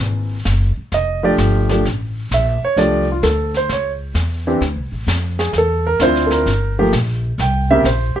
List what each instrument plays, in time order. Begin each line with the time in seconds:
Already playing: grand piano E3 A#3 C4 G#4
0.00 upright bass G#1
0.45 upright bass F#1, snare, hi-hat pedal
0.77 muted upright bass stroke
0.92 upright bass F1, grand piano D#5, brush sweep, snare
1.23 grand piano F3 A3 D4 G4 D5
1.38 upright bass G1, snare, hi-hat pedal
1.69 grand piano F3 A3 D4 G4, snare
1.84 upright bass A1, brush sweep, snare
2.31 upright bass A#1, grand piano E5, snare, hi-hat pedal
2.63 grand piano C#5, muted upright bass stroke
2.77 upright bass C2, grand piano F3 A3 D4 G4 D5, brush sweep, snare
3.12 grand piano F4
3.23 upright bass D2, grand piano A4, snare, hi-hat pedal
3.54 grand piano C5, snare
3.69 upright bass C#2, grand piano C#5, brush sweep, snare
4.14 upright bass E2, snare, hi-hat pedal
4.47 grand piano E3 C4 D4 G4
4.61 upright bass D2, brush sweep, snare
4.76 upright bass C2
4.92 upright bass A1
5.07 upright bass F2, snare, hi-hat pedal
5.39 grand piano G#4, snare
5.53 upright bass E2, grand piano G#4, brush sweep, snare
5.58 grand piano A4
5.87 grand piano A#4
6.00 upright bass D2, grand piano C4 D4 E4 F4 C5, snare, hi-hat pedal
6.16 snare
6.26 grand piano A4, snare
6.31 grand piano A#4, snare
6.46 upright bass G1, brush sweep, snare
6.79 grand piano F3 A3 A#3 G4
6.93 upright bass A#1, snare, hi-hat pedal
7.38 upright bass C2, grand piano G5, brush sweep, snare
7.71 grand piano C#3 A#3 C4 G4 E5
7.84 upright bass A#1, grand piano C5, snare, hi-hat pedal
8.16 grand piano G4, muted upright bass stroke